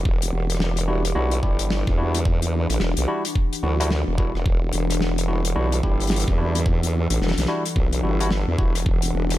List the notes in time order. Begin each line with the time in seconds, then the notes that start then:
Already playing: E3 D4 G4 F#5
0.05 E1, kick
0.22 closed hi-hat
0.33 E1
0.50 closed hi-hat
0.55 cross-stick
0.60 snare
0.77 closed hi-hat
0.87 G3 D4 E4 F#4
1.05 closed hi-hat
1.15 B1 G3 D4 E4 F#4
1.31 closed hi-hat
1.43 G1 G3 D4 E4 G4, kick
1.59 closed hi-hat
1.70 snare
1.87 E2, kick, cross-stick
1.98 G3 D4 E4 F#4
2.15 closed hi-hat
2.25 kick
2.42 closed hi-hat
2.70 A1, cross-stick, closed hi-hat
2.80 E1, snare
2.97 B1, closed hi-hat
3.08 G3 D4 E4 F#4
3.25 cross-stick, closed hi-hat
3.35 kick
3.53 closed hi-hat
3.63 D2 G3 D4 E4 F#4
3.80 G3 D4 E4 F#4, closed hi-hat
3.91 snare
4.08 E1
4.18 G3 D4 E4 F#4, kick
4.35 E1, cross-stick
4.46 E1 A4, kick
4.73 E1, closed hi-hat
4.90 cross-stick, closed hi-hat
5.01 snare
5.18 closed hi-hat
5.28 G3 D4 E4 F#4
5.45 closed hi-hat
5.56 B1 G3 D4 E4 F#4
5.72 closed hi-hat
5.83 G1 G3 D4 E4 G4, kick
6.00 closed hi-hat
6.07 snare, closed hi-hat
6.11 closed hi-hat
6.16 closed hi-hat
6.20 closed hi-hat
6.27 E2, kick, cross-stick
6.38 G3 D4 E4 F#4
6.55 closed hi-hat
6.66 kick
6.83 closed hi-hat
7.10 A1, cross-stick, closed hi-hat
7.21 E1, snare
7.27 snare
7.31 snare
7.38 B1, snare, closed hi-hat
7.45 G3 D4 E4 F#4, snare
7.65 cross-stick, closed hi-hat
7.76 B1, kick
7.93 closed hi-hat
8.03 G1 G3 D4 E4 F#4
8.20 G3 D4 E4 F#4, closed hi-hat
8.31 snare
8.48 E2
8.58 E1 G3 D4 E4 F#4, kick
8.75 cross-stick, closed hi-hat
8.86 E1, kick
9.02 closed hi-hat
9.13 E1
9.30 cross-stick, closed hi-hat